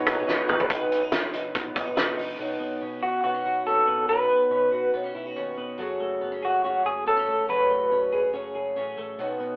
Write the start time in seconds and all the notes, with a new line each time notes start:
Already playing: B2 F#3 D#4 F#4 G#4 B4 C#5
0.06 B1 F#3 B3 D#4 F#4 B4, kick, closed hi-hat
0.26 B1 F#3 B3 D#4 F#4 B4, snare
0.48 A#1 F#3 B3 D#4 F#4 B4, mid tom
0.60 floor tom
0.69 B1 B2 D#3 F#3 B3 D#4 B4, kick, closed hi-hat
0.91 B1 C#4, closed hi-hat
1.01 B3 D#4 B4
1.12 B1 B4, snare, closed hi-hat
1.33 B1 F#3 B3 D#4 B4, closed hi-hat
1.54 B1 B3, kick, closed hi-hat
1.75 B1 F#3 B3 C#4 D#4 B4, kick, closed hi-hat
1.86 D#4
1.96 B1 F#3 B3 D#4 B4, snare, closed hi-hat
2.07 F#3 B3 D#4 B4
2.17 B1 D#4, open hi-hat
2.39 B1 B2 D#3 B3 C#4 F#4
2.60 B1 B3
2.81 B1 C#4
3.02 B1 B3 C#4 F#4
3.23 B1 D#3 B3 C#4 F#4
3.35 C#4
3.45 B1 F#4
3.65 D#2 D#3 B3 C#4 F#4 A4
3.87 A1 B3
4.08 B1 B2 D#3 B3 C#4 B4
4.12 F#4
4.30 B1 B3
4.50 B1 C#4
4.72 B1 F#4
4.94 B1 D#3 B3 C#4 F#4
5.04 C#4
5.15 B1 E4
5.26 F#4
5.36 D#2 D#3 B3 C#4 F#4
5.58 E1 B3
5.78 F#1 F#3 A3 C#4 G#4
6.00 F#1 A3
6.21 F#1 B3
6.32 C#4
6.42 F#1 F#4 G#4
6.64 F#1 F#3 A3 C#4 F#4 G#4
6.85 F#1 G#4
7.06 A1 F#3 A3 B3 C#4 A4
7.17 C#4
7.27 E1 A3
7.49 F#1 F#3 A3 C#4 G#4 B4
7.70 F#1 A3
7.91 F#1 C#4
8.12 F#1 A3 C#4 G#4
8.33 F#1 F#3 A3 C#4 G#4
8.55 F#1 G#4
8.76 A1 F#3 A3 C#4 G#4
8.97 A1 A3
9.18 B1 B2 D#3 B3 C#4 F#4
9.39 B1 B3